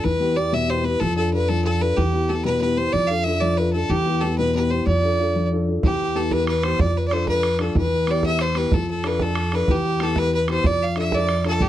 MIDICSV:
0, 0, Header, 1, 5, 480
1, 0, Start_track
1, 0, Tempo, 321199
1, 73, Time_signature, 6, 3, 24, 8
1, 17468, End_track
2, 0, Start_track
2, 0, Title_t, "Fiddle"
2, 0, Program_c, 0, 110
2, 58, Note_on_c, 0, 71, 94
2, 547, Note_on_c, 0, 74, 87
2, 569, Note_off_c, 0, 71, 0
2, 801, Note_on_c, 0, 76, 95
2, 824, Note_off_c, 0, 74, 0
2, 1038, Note_on_c, 0, 72, 84
2, 1060, Note_off_c, 0, 76, 0
2, 1266, Note_on_c, 0, 71, 89
2, 1288, Note_off_c, 0, 72, 0
2, 1496, Note_on_c, 0, 69, 98
2, 1518, Note_off_c, 0, 71, 0
2, 1738, Note_off_c, 0, 69, 0
2, 1747, Note_on_c, 0, 69, 76
2, 1973, Note_off_c, 0, 69, 0
2, 1992, Note_on_c, 0, 71, 87
2, 2227, Note_on_c, 0, 69, 99
2, 2249, Note_off_c, 0, 71, 0
2, 2448, Note_off_c, 0, 69, 0
2, 2456, Note_on_c, 0, 69, 83
2, 2715, Note_on_c, 0, 71, 92
2, 2738, Note_off_c, 0, 69, 0
2, 2947, Note_on_c, 0, 67, 89
2, 2969, Note_off_c, 0, 71, 0
2, 3427, Note_on_c, 0, 69, 80
2, 3449, Note_off_c, 0, 67, 0
2, 3648, Note_off_c, 0, 69, 0
2, 3657, Note_on_c, 0, 71, 97
2, 3888, Note_off_c, 0, 71, 0
2, 3901, Note_on_c, 0, 71, 87
2, 4144, Note_on_c, 0, 72, 95
2, 4167, Note_off_c, 0, 71, 0
2, 4370, Note_on_c, 0, 74, 105
2, 4392, Note_off_c, 0, 72, 0
2, 4594, Note_on_c, 0, 77, 95
2, 4617, Note_off_c, 0, 74, 0
2, 4841, Note_on_c, 0, 76, 99
2, 4864, Note_off_c, 0, 77, 0
2, 5090, Note_on_c, 0, 74, 100
2, 5113, Note_off_c, 0, 76, 0
2, 5341, Note_on_c, 0, 71, 88
2, 5364, Note_off_c, 0, 74, 0
2, 5563, Note_off_c, 0, 71, 0
2, 5572, Note_on_c, 0, 69, 87
2, 5825, Note_on_c, 0, 67, 98
2, 5847, Note_off_c, 0, 69, 0
2, 6289, Note_on_c, 0, 69, 88
2, 6311, Note_off_c, 0, 67, 0
2, 6537, Note_off_c, 0, 69, 0
2, 6546, Note_on_c, 0, 71, 96
2, 6772, Note_off_c, 0, 71, 0
2, 6801, Note_on_c, 0, 71, 84
2, 7032, Note_on_c, 0, 72, 83
2, 7055, Note_off_c, 0, 71, 0
2, 7272, Note_off_c, 0, 72, 0
2, 7281, Note_on_c, 0, 74, 90
2, 8176, Note_off_c, 0, 74, 0
2, 8736, Note_on_c, 0, 67, 93
2, 9208, Note_on_c, 0, 69, 80
2, 9230, Note_off_c, 0, 67, 0
2, 9451, Note_on_c, 0, 71, 95
2, 9473, Note_off_c, 0, 69, 0
2, 9670, Note_off_c, 0, 71, 0
2, 9679, Note_on_c, 0, 71, 78
2, 9912, Note_on_c, 0, 72, 91
2, 9935, Note_off_c, 0, 71, 0
2, 10169, Note_on_c, 0, 74, 98
2, 10191, Note_off_c, 0, 72, 0
2, 10418, Note_on_c, 0, 71, 80
2, 10440, Note_off_c, 0, 74, 0
2, 10569, Note_off_c, 0, 71, 0
2, 10578, Note_on_c, 0, 74, 60
2, 10650, Note_on_c, 0, 72, 86
2, 10672, Note_off_c, 0, 74, 0
2, 10880, Note_off_c, 0, 72, 0
2, 10892, Note_on_c, 0, 71, 98
2, 11303, Note_off_c, 0, 71, 0
2, 11303, Note_on_c, 0, 71, 62
2, 11381, Note_on_c, 0, 69, 86
2, 11403, Note_off_c, 0, 71, 0
2, 11605, Note_off_c, 0, 69, 0
2, 11620, Note_on_c, 0, 71, 94
2, 12114, Note_on_c, 0, 74, 88
2, 12136, Note_off_c, 0, 71, 0
2, 12332, Note_off_c, 0, 74, 0
2, 12342, Note_on_c, 0, 76, 103
2, 12570, Note_on_c, 0, 72, 91
2, 12593, Note_off_c, 0, 76, 0
2, 12812, Note_on_c, 0, 71, 94
2, 12834, Note_off_c, 0, 72, 0
2, 13063, Note_on_c, 0, 69, 92
2, 13085, Note_off_c, 0, 71, 0
2, 13286, Note_off_c, 0, 69, 0
2, 13310, Note_on_c, 0, 69, 86
2, 13551, Note_on_c, 0, 71, 87
2, 13574, Note_off_c, 0, 69, 0
2, 13779, Note_on_c, 0, 69, 93
2, 13801, Note_off_c, 0, 71, 0
2, 14268, Note_on_c, 0, 71, 89
2, 14290, Note_off_c, 0, 69, 0
2, 14511, Note_on_c, 0, 67, 95
2, 14533, Note_off_c, 0, 71, 0
2, 14993, Note_on_c, 0, 69, 94
2, 15016, Note_off_c, 0, 67, 0
2, 15221, Note_on_c, 0, 71, 105
2, 15243, Note_off_c, 0, 69, 0
2, 15445, Note_off_c, 0, 71, 0
2, 15462, Note_on_c, 0, 71, 84
2, 15670, Note_off_c, 0, 71, 0
2, 15693, Note_on_c, 0, 72, 99
2, 15935, Note_on_c, 0, 74, 109
2, 15957, Note_off_c, 0, 72, 0
2, 16182, Note_on_c, 0, 77, 100
2, 16204, Note_off_c, 0, 74, 0
2, 16405, Note_off_c, 0, 77, 0
2, 16416, Note_on_c, 0, 76, 98
2, 16660, Note_on_c, 0, 74, 109
2, 16683, Note_off_c, 0, 76, 0
2, 17125, Note_off_c, 0, 74, 0
2, 17148, Note_on_c, 0, 69, 93
2, 17366, Note_on_c, 0, 67, 105
2, 17388, Note_off_c, 0, 69, 0
2, 17468, Note_off_c, 0, 67, 0
2, 17468, End_track
3, 0, Start_track
3, 0, Title_t, "Upright piano"
3, 0, Program_c, 1, 0
3, 59, Note_on_c, 1, 52, 61
3, 297, Note_on_c, 1, 59, 51
3, 302, Note_on_c, 1, 64, 44
3, 311, Note_on_c, 1, 67, 57
3, 515, Note_off_c, 1, 59, 0
3, 520, Note_off_c, 1, 64, 0
3, 525, Note_off_c, 1, 67, 0
3, 532, Note_off_c, 1, 52, 0
3, 538, Note_on_c, 1, 59, 52
3, 542, Note_on_c, 1, 64, 48
3, 548, Note_on_c, 1, 67, 58
3, 782, Note_on_c, 1, 47, 70
3, 928, Note_off_c, 1, 59, 0
3, 931, Note_off_c, 1, 64, 0
3, 934, Note_off_c, 1, 67, 0
3, 1016, Note_on_c, 1, 59, 53
3, 1020, Note_on_c, 1, 64, 47
3, 1026, Note_on_c, 1, 67, 58
3, 1229, Note_off_c, 1, 59, 0
3, 1237, Note_off_c, 1, 64, 0
3, 1245, Note_off_c, 1, 67, 0
3, 1251, Note_on_c, 1, 59, 46
3, 1253, Note_off_c, 1, 47, 0
3, 1259, Note_on_c, 1, 64, 46
3, 1267, Note_on_c, 1, 67, 48
3, 1452, Note_off_c, 1, 59, 0
3, 1457, Note_off_c, 1, 64, 0
3, 1462, Note_off_c, 1, 67, 0
3, 1503, Note_on_c, 1, 53, 64
3, 1735, Note_on_c, 1, 62, 49
3, 1738, Note_on_c, 1, 65, 47
3, 1746, Note_on_c, 1, 69, 54
3, 1953, Note_off_c, 1, 62, 0
3, 1963, Note_off_c, 1, 65, 0
3, 1966, Note_off_c, 1, 69, 0
3, 1973, Note_off_c, 1, 53, 0
3, 1976, Note_on_c, 1, 62, 51
3, 1986, Note_on_c, 1, 65, 47
3, 1989, Note_on_c, 1, 69, 55
3, 2230, Note_on_c, 1, 53, 69
3, 2367, Note_off_c, 1, 62, 0
3, 2373, Note_off_c, 1, 65, 0
3, 2374, Note_off_c, 1, 69, 0
3, 2457, Note_on_c, 1, 62, 48
3, 2465, Note_on_c, 1, 65, 48
3, 2467, Note_on_c, 1, 69, 54
3, 2671, Note_off_c, 1, 62, 0
3, 2681, Note_off_c, 1, 69, 0
3, 2682, Note_off_c, 1, 65, 0
3, 2693, Note_on_c, 1, 62, 46
3, 2697, Note_off_c, 1, 53, 0
3, 2703, Note_on_c, 1, 69, 50
3, 2704, Note_on_c, 1, 65, 43
3, 2893, Note_off_c, 1, 62, 0
3, 2899, Note_off_c, 1, 69, 0
3, 2900, Note_off_c, 1, 65, 0
3, 2948, Note_on_c, 1, 52, 62
3, 3185, Note_on_c, 1, 59, 47
3, 3194, Note_on_c, 1, 64, 45
3, 3200, Note_on_c, 1, 67, 53
3, 3398, Note_off_c, 1, 59, 0
3, 3403, Note_off_c, 1, 64, 0
3, 3406, Note_off_c, 1, 67, 0
3, 3416, Note_off_c, 1, 52, 0
3, 3421, Note_on_c, 1, 59, 48
3, 3425, Note_on_c, 1, 64, 50
3, 3428, Note_on_c, 1, 67, 59
3, 3659, Note_on_c, 1, 47, 63
3, 3810, Note_off_c, 1, 59, 0
3, 3812, Note_off_c, 1, 64, 0
3, 3814, Note_off_c, 1, 67, 0
3, 3897, Note_on_c, 1, 59, 48
3, 3906, Note_on_c, 1, 64, 48
3, 3909, Note_on_c, 1, 67, 56
3, 4110, Note_off_c, 1, 59, 0
3, 4122, Note_off_c, 1, 64, 0
3, 4126, Note_off_c, 1, 67, 0
3, 4131, Note_off_c, 1, 47, 0
3, 4133, Note_on_c, 1, 59, 46
3, 4144, Note_on_c, 1, 64, 44
3, 4148, Note_on_c, 1, 67, 53
3, 4333, Note_off_c, 1, 59, 0
3, 4340, Note_off_c, 1, 64, 0
3, 4342, Note_off_c, 1, 67, 0
3, 4383, Note_on_c, 1, 53, 61
3, 4615, Note_on_c, 1, 62, 49
3, 4620, Note_on_c, 1, 65, 44
3, 4625, Note_on_c, 1, 69, 54
3, 4831, Note_off_c, 1, 62, 0
3, 4839, Note_off_c, 1, 65, 0
3, 4844, Note_off_c, 1, 69, 0
3, 4853, Note_off_c, 1, 53, 0
3, 4853, Note_on_c, 1, 62, 49
3, 4862, Note_on_c, 1, 65, 46
3, 4866, Note_on_c, 1, 69, 56
3, 5100, Note_on_c, 1, 53, 67
3, 5245, Note_off_c, 1, 62, 0
3, 5250, Note_off_c, 1, 65, 0
3, 5253, Note_off_c, 1, 69, 0
3, 5333, Note_on_c, 1, 62, 50
3, 5340, Note_on_c, 1, 65, 49
3, 5343, Note_on_c, 1, 69, 52
3, 5554, Note_off_c, 1, 62, 0
3, 5563, Note_off_c, 1, 65, 0
3, 5572, Note_off_c, 1, 53, 0
3, 5572, Note_off_c, 1, 69, 0
3, 5576, Note_on_c, 1, 62, 49
3, 5585, Note_on_c, 1, 65, 42
3, 5594, Note_on_c, 1, 69, 55
3, 5775, Note_off_c, 1, 62, 0
3, 5780, Note_off_c, 1, 65, 0
3, 5785, Note_off_c, 1, 69, 0
3, 5832, Note_on_c, 1, 52, 65
3, 6062, Note_on_c, 1, 59, 51
3, 6066, Note_on_c, 1, 64, 44
3, 6069, Note_on_c, 1, 67, 57
3, 6294, Note_off_c, 1, 59, 0
3, 6298, Note_off_c, 1, 52, 0
3, 6299, Note_off_c, 1, 64, 0
3, 6302, Note_off_c, 1, 67, 0
3, 6316, Note_on_c, 1, 59, 54
3, 6321, Note_on_c, 1, 64, 47
3, 6324, Note_on_c, 1, 67, 59
3, 6559, Note_on_c, 1, 47, 67
3, 6699, Note_off_c, 1, 59, 0
3, 6701, Note_off_c, 1, 64, 0
3, 6703, Note_off_c, 1, 67, 0
3, 6795, Note_on_c, 1, 59, 52
3, 6800, Note_on_c, 1, 64, 49
3, 6804, Note_on_c, 1, 67, 59
3, 7010, Note_off_c, 1, 59, 0
3, 7020, Note_off_c, 1, 64, 0
3, 7021, Note_off_c, 1, 47, 0
3, 7024, Note_off_c, 1, 67, 0
3, 7032, Note_on_c, 1, 59, 46
3, 7042, Note_on_c, 1, 64, 41
3, 7046, Note_on_c, 1, 67, 50
3, 7224, Note_off_c, 1, 59, 0
3, 7230, Note_off_c, 1, 64, 0
3, 7233, Note_off_c, 1, 67, 0
3, 7269, Note_on_c, 1, 53, 63
3, 7511, Note_on_c, 1, 62, 48
3, 7517, Note_on_c, 1, 65, 46
3, 7526, Note_on_c, 1, 69, 53
3, 7732, Note_off_c, 1, 62, 0
3, 7736, Note_off_c, 1, 53, 0
3, 7737, Note_off_c, 1, 65, 0
3, 7744, Note_off_c, 1, 69, 0
3, 7754, Note_on_c, 1, 62, 53
3, 7759, Note_on_c, 1, 65, 47
3, 7766, Note_on_c, 1, 69, 57
3, 8001, Note_on_c, 1, 53, 61
3, 8137, Note_off_c, 1, 62, 0
3, 8140, Note_off_c, 1, 65, 0
3, 8144, Note_off_c, 1, 69, 0
3, 8244, Note_on_c, 1, 62, 50
3, 8247, Note_on_c, 1, 65, 44
3, 8253, Note_on_c, 1, 69, 57
3, 8462, Note_off_c, 1, 53, 0
3, 8467, Note_off_c, 1, 62, 0
3, 8474, Note_off_c, 1, 65, 0
3, 8483, Note_off_c, 1, 69, 0
3, 8489, Note_on_c, 1, 62, 44
3, 8497, Note_on_c, 1, 65, 42
3, 8506, Note_on_c, 1, 69, 50
3, 8674, Note_off_c, 1, 62, 0
3, 8678, Note_off_c, 1, 65, 0
3, 8684, Note_off_c, 1, 69, 0
3, 8721, Note_on_c, 1, 52, 67
3, 9190, Note_on_c, 1, 59, 55
3, 9194, Note_on_c, 1, 64, 49
3, 9202, Note_on_c, 1, 67, 56
3, 9656, Note_off_c, 1, 59, 0
3, 9658, Note_off_c, 1, 64, 0
3, 9662, Note_off_c, 1, 67, 0
3, 9914, Note_on_c, 1, 59, 46
3, 9923, Note_on_c, 1, 64, 40
3, 9932, Note_on_c, 1, 67, 50
3, 10112, Note_off_c, 1, 52, 0
3, 10145, Note_off_c, 1, 59, 0
3, 10150, Note_off_c, 1, 64, 0
3, 10154, Note_off_c, 1, 67, 0
3, 10156, Note_on_c, 1, 53, 65
3, 10624, Note_on_c, 1, 62, 53
3, 10634, Note_on_c, 1, 65, 50
3, 10639, Note_on_c, 1, 69, 58
3, 11093, Note_off_c, 1, 62, 0
3, 11098, Note_off_c, 1, 65, 0
3, 11100, Note_off_c, 1, 69, 0
3, 11337, Note_on_c, 1, 62, 50
3, 11340, Note_on_c, 1, 65, 44
3, 11354, Note_on_c, 1, 69, 50
3, 11550, Note_off_c, 1, 53, 0
3, 11576, Note_off_c, 1, 62, 0
3, 11578, Note_off_c, 1, 65, 0
3, 11585, Note_off_c, 1, 69, 0
3, 11595, Note_on_c, 1, 52, 70
3, 12065, Note_on_c, 1, 59, 54
3, 12077, Note_on_c, 1, 64, 48
3, 12082, Note_on_c, 1, 67, 60
3, 12533, Note_off_c, 1, 59, 0
3, 12539, Note_off_c, 1, 64, 0
3, 12541, Note_off_c, 1, 67, 0
3, 12776, Note_on_c, 1, 59, 45
3, 12783, Note_on_c, 1, 64, 43
3, 12790, Note_on_c, 1, 67, 55
3, 12989, Note_off_c, 1, 52, 0
3, 13015, Note_off_c, 1, 59, 0
3, 13019, Note_off_c, 1, 64, 0
3, 13022, Note_off_c, 1, 67, 0
3, 13025, Note_on_c, 1, 53, 65
3, 13503, Note_on_c, 1, 62, 52
3, 13509, Note_on_c, 1, 65, 46
3, 13515, Note_on_c, 1, 69, 57
3, 13972, Note_off_c, 1, 62, 0
3, 13975, Note_off_c, 1, 65, 0
3, 13978, Note_off_c, 1, 69, 0
3, 14234, Note_on_c, 1, 62, 43
3, 14236, Note_on_c, 1, 65, 41
3, 14245, Note_on_c, 1, 69, 54
3, 14424, Note_off_c, 1, 53, 0
3, 14464, Note_off_c, 1, 62, 0
3, 14465, Note_off_c, 1, 65, 0
3, 14470, Note_off_c, 1, 69, 0
3, 14471, Note_on_c, 1, 52, 61
3, 14945, Note_on_c, 1, 59, 50
3, 14947, Note_on_c, 1, 64, 46
3, 14954, Note_on_c, 1, 67, 60
3, 15413, Note_off_c, 1, 59, 0
3, 15414, Note_off_c, 1, 64, 0
3, 15417, Note_off_c, 1, 67, 0
3, 15662, Note_on_c, 1, 59, 47
3, 15666, Note_on_c, 1, 64, 43
3, 15673, Note_on_c, 1, 67, 52
3, 15867, Note_off_c, 1, 52, 0
3, 15898, Note_off_c, 1, 59, 0
3, 15900, Note_off_c, 1, 64, 0
3, 15904, Note_off_c, 1, 67, 0
3, 15904, Note_on_c, 1, 53, 63
3, 16380, Note_on_c, 1, 62, 54
3, 16386, Note_on_c, 1, 65, 47
3, 16391, Note_on_c, 1, 69, 55
3, 16850, Note_off_c, 1, 62, 0
3, 16853, Note_off_c, 1, 65, 0
3, 16855, Note_off_c, 1, 69, 0
3, 17100, Note_on_c, 1, 62, 46
3, 17112, Note_on_c, 1, 69, 53
3, 17113, Note_on_c, 1, 65, 46
3, 17304, Note_off_c, 1, 53, 0
3, 17337, Note_off_c, 1, 62, 0
3, 17343, Note_off_c, 1, 69, 0
3, 17344, Note_off_c, 1, 65, 0
3, 17348, Note_on_c, 1, 55, 66
3, 17468, Note_off_c, 1, 55, 0
3, 17468, End_track
4, 0, Start_track
4, 0, Title_t, "Upright bass"
4, 0, Program_c, 2, 32
4, 78, Note_on_c, 2, 40, 77
4, 1487, Note_off_c, 2, 40, 0
4, 1515, Note_on_c, 2, 41, 82
4, 2925, Note_off_c, 2, 41, 0
4, 2951, Note_on_c, 2, 40, 78
4, 4363, Note_off_c, 2, 40, 0
4, 4388, Note_on_c, 2, 41, 75
4, 5801, Note_off_c, 2, 41, 0
4, 5821, Note_on_c, 2, 40, 79
4, 7237, Note_off_c, 2, 40, 0
4, 7271, Note_on_c, 2, 41, 81
4, 8682, Note_off_c, 2, 41, 0
4, 8714, Note_on_c, 2, 40, 79
4, 10123, Note_off_c, 2, 40, 0
4, 10150, Note_on_c, 2, 41, 81
4, 11561, Note_off_c, 2, 41, 0
4, 11583, Note_on_c, 2, 40, 78
4, 12997, Note_off_c, 2, 40, 0
4, 13027, Note_on_c, 2, 41, 80
4, 14439, Note_off_c, 2, 41, 0
4, 14470, Note_on_c, 2, 40, 79
4, 15880, Note_off_c, 2, 40, 0
4, 15904, Note_on_c, 2, 41, 77
4, 17318, Note_off_c, 2, 41, 0
4, 17340, Note_on_c, 2, 43, 81
4, 17468, Note_off_c, 2, 43, 0
4, 17468, End_track
5, 0, Start_track
5, 0, Title_t, "Bodhran"
5, 8716, Note_on_c, 9, 64, 83
5, 8866, Note_off_c, 9, 64, 0
5, 9435, Note_on_c, 9, 64, 82
5, 9584, Note_off_c, 9, 64, 0
5, 9674, Note_on_c, 9, 64, 66
5, 9823, Note_off_c, 9, 64, 0
5, 9914, Note_on_c, 9, 64, 62
5, 10064, Note_off_c, 9, 64, 0
5, 10152, Note_on_c, 9, 64, 88
5, 10301, Note_off_c, 9, 64, 0
5, 10629, Note_on_c, 9, 64, 65
5, 10779, Note_off_c, 9, 64, 0
5, 10867, Note_on_c, 9, 64, 74
5, 11016, Note_off_c, 9, 64, 0
5, 11106, Note_on_c, 9, 64, 61
5, 11256, Note_off_c, 9, 64, 0
5, 11341, Note_on_c, 9, 64, 59
5, 11490, Note_off_c, 9, 64, 0
5, 11588, Note_on_c, 9, 64, 81
5, 11738, Note_off_c, 9, 64, 0
5, 12062, Note_on_c, 9, 64, 59
5, 12212, Note_off_c, 9, 64, 0
5, 12299, Note_on_c, 9, 64, 82
5, 12448, Note_off_c, 9, 64, 0
5, 12536, Note_on_c, 9, 64, 60
5, 12686, Note_off_c, 9, 64, 0
5, 12780, Note_on_c, 9, 64, 58
5, 12929, Note_off_c, 9, 64, 0
5, 13025, Note_on_c, 9, 64, 79
5, 13174, Note_off_c, 9, 64, 0
5, 13508, Note_on_c, 9, 64, 65
5, 13657, Note_off_c, 9, 64, 0
5, 13742, Note_on_c, 9, 64, 78
5, 13891, Note_off_c, 9, 64, 0
5, 13980, Note_on_c, 9, 64, 63
5, 14129, Note_off_c, 9, 64, 0
5, 14227, Note_on_c, 9, 64, 58
5, 14377, Note_off_c, 9, 64, 0
5, 14466, Note_on_c, 9, 64, 77
5, 14616, Note_off_c, 9, 64, 0
5, 14946, Note_on_c, 9, 64, 61
5, 15095, Note_off_c, 9, 64, 0
5, 15181, Note_on_c, 9, 64, 76
5, 15330, Note_off_c, 9, 64, 0
5, 15662, Note_on_c, 9, 64, 61
5, 15811, Note_off_c, 9, 64, 0
5, 15903, Note_on_c, 9, 64, 82
5, 16053, Note_off_c, 9, 64, 0
5, 16376, Note_on_c, 9, 64, 59
5, 16525, Note_off_c, 9, 64, 0
5, 16619, Note_on_c, 9, 64, 74
5, 16769, Note_off_c, 9, 64, 0
5, 16866, Note_on_c, 9, 64, 61
5, 17015, Note_off_c, 9, 64, 0
5, 17103, Note_on_c, 9, 64, 53
5, 17252, Note_off_c, 9, 64, 0
5, 17344, Note_on_c, 9, 64, 66
5, 17468, Note_off_c, 9, 64, 0
5, 17468, End_track
0, 0, End_of_file